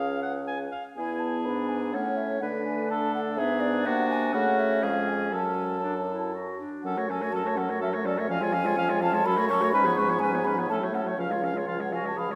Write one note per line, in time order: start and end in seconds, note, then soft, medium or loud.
0.00 0.69 C#2 medium
0.00 0.69 C#4 medium
0.00 0.72 G#4 medium
0.00 0.20 F5 medium
0.00 0.69 F5 medium
0.22 0.33 F#5 medium
0.47 0.58 G#5 medium
0.72 0.83 F5 soft
0.96 1.48 E2 medium
0.96 1.96 B3 medium
0.96 1.47 E4 medium
0.96 1.96 G#4 medium
0.96 1.21 G#5 medium
1.20 1.47 A5 medium
1.45 1.95 G#2 medium
1.45 1.95 D4 medium
1.45 1.70 B5 medium
1.69 1.92 G#5 medium
1.92 2.42 A2 medium
1.92 2.41 A3 medium
1.92 2.40 C#4 medium
1.92 2.42 C#5 medium
1.92 2.18 F#5 medium
2.17 2.39 E5 medium
2.40 3.40 D3 medium
2.40 3.36 A3 medium
2.40 3.36 D4 medium
2.40 2.90 B4 medium
2.40 2.46 F#5 medium
2.65 2.92 G#5 medium
2.91 3.40 A4 medium
2.91 3.14 A5 medium
3.14 3.20 F#5 medium
3.36 3.86 G#2 medium
3.36 3.88 B3 medium
3.36 4.35 D4 medium
3.36 3.88 G#4 medium
3.36 3.62 E5 loud
3.60 3.87 D5 loud
3.86 4.34 C3 medium
3.86 4.33 A#3 medium
3.86 4.33 F#4 medium
3.86 4.09 F#5 loud
4.10 4.36 G#5 loud
4.33 4.82 C#3 medium
4.33 4.84 A3 medium
4.33 5.32 C#4 medium
4.33 4.84 F#4 medium
4.33 4.61 F#5 loud
4.59 4.85 E5 medium
4.83 5.34 F2 medium
4.83 5.34 G#3 medium
4.83 5.35 G#4 medium
4.83 5.10 F5 medium
5.08 5.32 G#5 medium
5.32 6.60 F#2 medium
5.32 6.60 F#3 medium
5.32 5.78 C#4 medium
5.32 6.60 A4 medium
5.32 6.32 A5 medium
5.83 5.95 D4 medium
6.09 6.36 E4 soft
6.34 6.59 F#4 medium
6.59 6.84 D4 soft
6.83 8.26 F#2 medium
6.83 6.98 F#3 medium
6.83 6.98 C#4 medium
6.83 6.99 A4 medium
6.83 7.07 F#5 medium
6.96 7.11 A3 medium
6.96 7.11 F#4 medium
6.96 7.12 C#5 medium
7.09 7.23 F#3 medium
7.09 7.23 C#4 medium
7.09 7.24 A4 medium
7.09 7.34 G#5 medium
7.21 7.32 A3 medium
7.21 7.32 F#4 medium
7.21 7.34 C#5 medium
7.32 7.47 F#3 medium
7.32 7.45 C#4 medium
7.32 7.49 A4 medium
7.32 7.59 A5 medium
7.44 7.59 A3 medium
7.44 7.58 F#4 medium
7.44 7.59 C#5 medium
7.56 7.71 F#3 medium
7.56 7.70 C#4 medium
7.56 7.71 A4 medium
7.56 7.82 F#5 medium
7.69 7.82 A3 medium
7.69 7.80 F#4 medium
7.69 7.80 C#5 medium
7.81 7.96 F#3 medium
7.81 7.95 C#4 medium
7.81 7.95 A4 medium
7.81 7.89 E5 medium
7.93 8.07 A3 medium
7.93 8.06 F#4 medium
7.93 8.07 C#5 medium
8.05 8.20 F#3 medium
8.05 8.19 C#4 medium
8.05 8.20 A4 medium
8.05 8.22 D5 loud
8.17 8.29 A3 medium
8.17 8.27 F#4 medium
8.17 8.29 C#5 medium
8.17 8.30 E5 medium
8.28 9.27 F2 medium
8.28 8.43 F3 medium
8.28 8.42 C#4 medium
8.28 8.44 F5 medium
8.28 9.00 G#5 loud
8.41 8.56 G#3 medium
8.41 8.55 F4 medium
8.41 8.54 C#5 medium
8.53 8.67 F3 medium
8.53 8.67 C#4 medium
8.53 8.67 F5 medium
8.65 8.77 G#3 medium
8.65 8.76 F4 medium
8.65 8.77 C#5 medium
8.77 8.92 F3 medium
8.77 8.91 C#4 medium
8.77 8.91 F5 medium
8.89 9.03 G#3 medium
8.89 9.03 F4 medium
8.89 9.02 C#5 medium
9.01 9.15 F3 medium
9.01 9.16 C#4 medium
9.01 9.15 F5 medium
9.01 9.27 A5 loud
9.13 9.24 G#3 medium
9.13 9.26 F4 medium
9.13 9.25 C#5 medium
9.25 9.75 F#2 medium
9.25 9.39 F#3 medium
9.25 9.38 C#4 medium
9.25 9.39 A4 medium
9.25 9.48 B5 loud
9.37 9.51 A3 medium
9.37 9.51 F#4 medium
9.37 9.53 C#5 medium
9.49 9.63 F#3 medium
9.49 9.63 C#4 medium
9.49 9.64 A4 medium
9.49 9.72 C#6 loud
9.62 9.73 A3 medium
9.62 9.73 F#4 medium
9.62 9.73 C#5 medium
9.73 10.70 G#2 medium
9.73 9.87 G#3 medium
9.73 9.87 C#4 medium
9.73 9.87 B4 medium
9.73 9.95 B5 loud
9.85 9.99 F3 medium
9.85 10.00 B3 medium
9.85 10.00 C#5 medium
9.96 10.10 G#3 medium
9.96 10.11 C#4 medium
9.96 10.12 B4 medium
9.96 10.21 C#6 loud
10.08 10.20 F3 medium
10.08 10.21 B3 medium
10.08 10.21 C#5 medium
10.19 10.34 G#3 medium
10.19 10.36 C#4 medium
10.19 10.36 B4 medium
10.19 10.46 G#5 loud
10.32 10.46 F3 medium
10.32 10.48 B3 medium
10.32 10.49 C#5 medium
10.44 10.57 G#3 medium
10.44 10.60 C#4 medium
10.44 10.60 B4 medium
10.44 10.69 B5 loud
10.56 10.68 F3 medium
10.56 10.70 B3 medium
10.56 10.70 C#5 medium
10.68 11.17 A2 medium
10.68 10.81 A3 medium
10.68 10.84 C#4 medium
10.68 10.85 A4 medium
10.68 10.75 A5 loud
10.80 10.93 F#3 medium
10.80 10.96 A3 medium
10.84 10.96 C#5 medium
10.92 11.05 A3 medium
10.92 11.08 C#4 medium
10.92 11.08 A4 medium
10.92 11.00 F#5 medium
11.04 11.17 F#3 medium
11.04 11.17 A3 medium
11.04 11.18 C#5 medium
11.17 12.35 C#2 medium
11.17 11.32 F3 medium
11.17 11.33 C#4 medium
11.17 11.54 F5 medium
11.17 11.33 F5 medium
11.30 11.43 G#3 medium
11.30 11.44 F4 medium
11.30 11.46 C#5 medium
11.41 11.55 F3 medium
11.41 11.56 C#4 medium
11.41 11.59 F5 medium
11.54 11.66 G#3 medium
11.54 11.66 F4 soft
11.54 11.68 C#5 soft
11.66 11.81 F3 soft
11.66 11.78 F4 medium
11.66 11.82 F5 medium
11.80 11.93 G#3 soft
11.80 11.94 C#5 medium
11.80 11.93 F#5 medium
11.92 12.05 F3 medium
11.92 12.18 F#4 medium
11.92 12.07 F5 soft
11.92 12.05 G#5 medium
12.04 12.15 G#3 soft
12.04 12.18 C#5 soft
12.04 12.20 A5 medium
12.16 12.31 F3 soft
12.16 12.35 G#4 medium
12.16 12.33 F5 soft
12.16 12.31 B5 medium
12.29 12.35 G#3 soft
12.29 12.35 C#5 soft